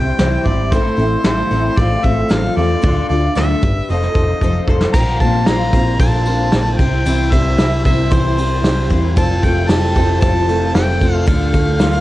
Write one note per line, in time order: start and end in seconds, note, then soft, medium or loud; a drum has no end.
0.00 0.10 C2 medium
0.00 0.17 C3 loud
0.00 0.18 E3 medium
0.00 0.18 G3 soft
0.00 0.18 G3 loud
0.00 0.18 C4 medium
0.00 0.19 C4 soft
0.00 0.19 E4 medium
0.00 0.19 C5 medium
0.00 0.47 G5 loud
0.19 0.36 C2 medium
0.19 0.46 C3 medium
0.19 0.46 E3 medium
0.19 0.46 G3 medium
0.19 0.46 C4 medium
0.19 0.44 E4 medium
0.19 0.43 C5 medium
0.19 snare loud
0.19 open hi-hat medium
0.45 0.72 G#1 medium
0.45 0.72 G3 soft
0.45 0.72 C4 soft
0.45 0.72 E4 medium
0.45 0.72 C5 soft
0.45 0.74 D5 medium
0.45 kick medium
0.45 open hi-hat soft
0.72 0.89 A1 medium
0.72 0.99 A2 medium
0.72 0.99 E3 medium
0.72 0.98 A3 medium
0.72 0.98 C4 medium
0.72 0.97 E4 medium
0.72 0.96 A4 medium
0.72 1.25 C5 medium
0.72 kick loud
0.72 open hi-hat medium
0.97 1.15 A1 medium
0.97 1.23 A3 soft
0.97 1.24 C4 soft
0.97 1.24 E4 soft
0.97 1.24 A4 soft
0.97 open hi-hat soft
1.24 1.42 A1 medium
1.24 1.51 A2 medium
1.24 1.51 E3 medium
1.24 1.51 A3 medium
1.24 1.52 C4 medium
1.24 1.51 E4 medium
1.24 1.50 A4 medium
1.24 1.80 C5 loud
1.24 snare medium
1.24 open hi-hat medium
1.51 1.69 A1 medium
1.51 1.76 A2 medium
1.51 1.77 E3 medium
1.51 1.75 A3 soft
1.51 1.77 C4 soft
1.51 1.78 E4 medium
1.51 1.78 A4 medium
1.51 open hi-hat soft
1.76 1.95 A1 medium
1.76 2.55 A2 medium
1.76 2.56 F3 medium
1.76 2.04 A3 medium
1.76 2.03 C4 medium
1.76 2.03 F4 medium
1.76 2.02 A4 medium
1.76 2.05 D5 medium
1.76 kick loud
1.76 open hi-hat medium
2.03 2.21 A1 medium
2.03 2.28 A3 soft
2.03 2.28 C4 soft
2.03 2.29 F4 soft
2.03 2.29 A4 soft
2.03 2.33 E5 medium
2.03 kick medium
2.03 open hi-hat medium
2.29 2.48 A1 medium
2.29 2.56 A2 medium
2.29 2.57 F3 medium
2.29 2.56 A3 medium
2.29 2.56 C4 medium
2.29 2.55 F4 medium
2.29 2.54 A4 medium
2.29 2.56 F5 medium
2.29 snare loud
2.29 open hi-hat medium
2.55 2.74 E2 medium
2.55 2.83 A2 medium
2.55 2.83 F3 medium
2.55 2.81 A3 soft
2.55 2.82 C4 soft
2.55 2.82 F4 soft
2.55 2.83 A4 soft
2.55 3.06 D5 medium
2.55 open hi-hat soft
2.82 3.01 D2 medium
2.82 3.09 D3 medium
2.82 3.09 A3 medium
2.82 3.10 D4 medium
2.82 3.10 F4 medium
2.82 3.08 A4 medium
2.82 kick loud
2.82 open hi-hat medium
3.09 3.27 D2 medium
3.09 3.34 D4 soft
3.09 3.35 F4 soft
3.09 3.35 A4 medium
3.09 3.34 D5 medium
3.09 open hi-hat soft
3.35 3.54 D2 medium
3.35 3.62 D3 medium
3.35 3.62 A3 medium
3.35 3.62 D4 medium
3.35 3.63 F4 medium
3.35 3.61 A4 medium
3.35 3.85 E5 medium
3.35 snare loud
3.35 open hi-hat medium
3.62 3.80 G1 medium
3.62 3.89 D4 medium
3.62 3.90 G4 medium
3.62 3.89 B4 medium
3.62 kick loud
3.62 open hi-hat soft
3.89 4.07 F1 medium
3.89 4.67 F3 medium
3.89 4.15 C4 medium
3.89 4.16 D#4 medium
3.89 4.15 A4 medium
3.89 4.13 C5 medium
3.89 4.65 D#5 medium
3.89 open hi-hat medium
4.02 snare soft
4.14 4.33 F1 medium
4.14 4.42 D#4 soft
4.14 4.42 A4 soft
4.14 4.41 C5 soft
4.14 kick medium
4.14 open hi-hat medium
4.41 4.59 F1 medium
4.41 4.69 F3 medium
4.41 4.69 C4 medium
4.41 4.69 D#4 medium
4.41 4.69 A4 medium
4.41 4.68 C5 medium
4.41 kick medium
4.67 4.85 F1 medium
4.67 4.94 F3 medium
4.67 4.94 C4 medium
4.67 4.95 D#4 soft
4.67 4.95 A4 medium
4.67 4.95 C5 medium
4.67 kick medium
4.81 snare medium
4.93 5.19 A#1 medium
4.93 5.21 A#2 medium
4.93 5.21 D3 medium
4.93 5.21 A#3 medium
4.93 5.22 C4 medium
4.93 5.22 F4 medium
4.93 5.21 C5 medium
4.93 5.18 A#5 medium
4.93 kick loud
4.93 crash loud
5.20 5.46 A#1 medium
5.20 6.25 A#3 medium
5.20 5.48 F4 soft
5.20 5.48 C5 medium
5.20 5.48 A5 loud
5.20 kick medium
5.20 ride medium
5.24 5.46 A#3 soft
5.24 5.47 C4 soft
5.46 5.72 A#1 medium
5.46 5.74 A#3 medium
5.46 5.74 C4 medium
5.46 5.74 F4 medium
5.46 5.73 C5 medium
5.46 5.99 A#5 loud
5.46 snare loud
5.46 ride medium
5.73 5.99 A#1 medium
5.73 5.99 A#3 soft
5.73 6.00 C4 medium
5.73 6.00 F4 medium
5.73 6.00 C5 medium
5.73 kick medium
5.73 ride medium
5.99 6.50 A#1 medium
5.99 6.27 A#2 medium
5.99 6.26 D3 medium
5.99 6.27 A#3 medium
5.99 6.27 C4 medium
5.99 6.26 F4 medium
5.99 6.26 C5 medium
5.99 6.79 A5 loud
5.99 kick loud
5.99 ride medium
6.25 6.51 A#3 soft
6.25 6.52 C4 soft
6.25 6.53 F4 soft
6.25 6.53 C5 soft
6.25 ride medium
6.52 6.78 A#1 medium
6.52 6.79 A#3 medium
6.52 6.80 C4 soft
6.52 6.80 F4 soft
6.52 6.78 C5 medium
6.52 snare loud
6.52 ride medium
6.78 7.04 C2 medium
6.78 7.04 C3 medium
6.78 7.05 C4 soft
6.78 7.06 E4 medium
6.78 7.06 C5 soft
6.78 7.33 G5 medium
6.78 kick medium
6.78 ride medium
6.82 7.05 G3 soft
7.06 7.31 C2 medium
7.06 7.32 C3 medium
7.06 7.32 E3 medium
7.06 7.32 G3 medium
7.06 7.32 C4 medium
7.06 7.32 E4 medium
7.06 7.30 C5 medium
7.06 ride medium
7.32 7.57 C2 medium
7.32 7.57 G3 soft
7.32 7.57 C4 soft
7.32 7.59 E4 soft
7.32 7.58 C5 soft
7.32 7.84 E5 loud
7.32 kick medium
7.32 ride medium
7.58 7.84 C2 medium
7.58 7.85 G3 medium
7.58 7.85 C4 medium
7.58 7.85 E4 medium
7.58 7.84 C5 medium
7.58 snare loud
7.58 ride medium
7.84 8.10 C2 medium
7.84 8.10 G3 medium
7.84 8.11 C4 medium
7.84 8.11 E4 medium
7.84 8.11 C5 medium
7.84 8.14 E5 loud
7.84 kick medium
7.84 ride medium
8.11 8.62 C2 loud
8.11 8.38 C3 medium
8.11 8.38 E3 medium
8.11 8.38 G3 medium
8.11 8.38 C4 medium
8.11 8.37 E4 medium
8.11 8.36 C5 medium
8.11 8.91 C5 medium
8.11 kick loud
8.11 ride medium
8.37 8.64 G3 soft
8.37 8.64 C4 soft
8.37 8.64 E4 medium
8.37 8.64 C5 soft
8.37 ride medium
8.63 8.89 C2 medium
8.63 8.91 G3 medium
8.63 8.91 C4 medium
8.63 8.90 E4 medium
8.63 8.89 C5 medium
8.63 snare loud
8.63 ride medium
8.90 9.16 E2 medium
8.90 9.17 E3 medium
8.90 9.16 G3 soft
8.90 9.16 C4 medium
8.90 9.18 E4 soft
8.90 9.17 C5 medium
8.90 kick medium
8.90 ride medium
9.16 9.42 F1 medium
9.16 9.43 F3 medium
9.16 9.43 G3 medium
9.16 9.44 C4 medium
9.16 9.43 F4 medium
9.16 9.42 A4 medium
9.16 9.45 A5 loud
9.16 kick loud
9.16 ride medium
9.43 9.68 F1 loud
9.43 10.47 A3 medium
9.43 9.68 C4 soft
9.43 9.69 F4 soft
9.43 9.69 A4 medium
9.43 9.70 G5 loud
9.43 kick medium
9.43 ride medium
9.68 9.95 F1 medium
9.68 9.96 G3 medium
9.68 9.96 C4 medium
9.68 9.95 F4 medium
9.68 11.02 G4 medium
9.68 9.94 A4 medium
9.68 10.20 A5 loud
9.68 snare loud
9.68 ride medium
9.95 10.21 F1 medium
9.95 10.21 C4 medium
9.95 10.21 F4 medium
9.95 10.22 A4 medium
9.95 kick medium
9.95 ride medium
10.20 10.73 F1 medium
10.20 10.48 F3 medium
10.20 10.49 G3 medium
10.20 10.49 C4 medium
10.20 10.48 F4 medium
10.20 10.46 A4 medium
10.20 10.70 A5 loud
10.20 kick loud
10.20 ride medium
10.48 11.28 A3 medium
10.48 10.74 C4 soft
10.48 10.75 F4 soft
10.48 10.75 A4 soft
10.48 ride medium
10.74 11.00 F1 medium
10.74 11.01 G3 medium
10.74 11.02 C4 medium
10.74 11.01 F4 medium
10.74 10.99 A4 medium
10.74 11.24 G5 loud
10.74 snare loud
10.74 ride medium
11.00 11.27 F1 medium
11.00 11.27 F3 medium
11.00 11.27 C4 medium
11.00 11.27 F4 medium
11.00 11.27 A4 medium
11.00 kick medium
11.00 ride medium
11.26 11.53 D2 medium
11.26 11.54 D3 medium
11.26 11.54 A3 medium
11.26 11.54 D4 medium
11.26 11.53 F4 medium
11.26 11.52 A4 loud
11.26 12.01 F5 medium
11.26 kick loud
11.26 ride medium
11.53 11.79 D2 medium
11.53 12.01 A3 medium
11.53 11.79 D4 soft
11.53 11.80 F4 soft
11.53 11.80 A4 medium
11.53 kick medium
11.53 ride medium
11.79 12.01 D2 medium
11.79 12.01 A3 medium
11.79 12.01 D4 medium
11.79 12.01 F4 medium
11.79 12.01 A4 medium
11.79 snare loud
11.79 ride medium